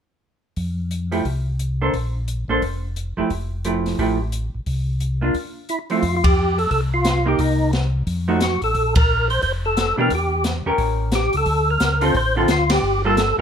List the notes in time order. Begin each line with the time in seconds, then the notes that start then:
0.56 F2, kick, open hi-hat
0.91 closed hi-hat
1.12 F3 A3 E4 G4, open hi-hat
1.25 C2, kick, open hi-hat
1.59 closed hi-hat
1.81 A#3 D4 A4 C5
1.94 A#1, kick, open hi-hat
2.28 closed hi-hat
2.48 A1 A#3 D4 A4 C5
2.62 F1, kick, open hi-hat
2.96 closed hi-hat
3.17 F1 F3 A3 E4 G4
3.30 F1, kick, open hi-hat
3.65 F3 A3 E4 G4, closed hi-hat
3.86 snare, open hi-hat
3.99 A1 F3 A3 E4 G4, kick, open hi-hat
4.32 closed hi-hat
4.54 A1
4.66 C2, kick, open hi-hat
5.00 closed hi-hat
5.21 A#3 D4 F4
5.34 kick, open hi-hat
5.69 E4, closed hi-hat
5.90 F3 A3 C4 E4 F4, open hi-hat
6.02 F2, kick, open hi-hat
6.17 F4
6.24 G4, kick, ride
6.58 A4, open hi-hat
6.71 C2 A4, kick, open hi-hat
6.94 F4
7.05 snare, closed hi-hat
7.26 A#3 D#4 G4
7.39 C2 D#4, kick, open hi-hat
7.73 snare, closed hi-hat
8.07 F2, kick, open hi-hat
8.28 F3 A3 D#4 F#4
8.41 F#4, snare, closed hi-hat
8.61 A1 A4, open hi-hat
8.75 A#1, kick, open hi-hat
8.95 A#4, kick, ride
9.30 C5, open hi-hat
9.42 F1 C5, kick, open hi-hat
9.66 A4
9.77 snare, closed hi-hat
9.97 B2 E3 A#3 D4 G4 A#4
10.10 E2, kick, open hi-hat
10.15 G4
10.44 snare, closed hi-hat
10.66 E2 C#4 G4 A#4
10.78 A1, kick, open hi-hat
11.12 G4, snare, closed hi-hat
11.33 C#2, open hi-hat
11.37 A4
11.46 D2, kick, open hi-hat
11.70 A#4
11.80 C#2, snare, closed hi-hat
12.01 D3 C4 F4 A4, open hi-hat
12.05 C5
12.15 A1 C5, kick, open hi-hat
12.36 D3 C4 F4 A4
12.48 D2 F4, snare, closed hi-hat
12.70 G4, snare, ride
12.82 G1
13.05 G3 A#3 F4 A4
13.17 snare, closed hi-hat
13.37 G1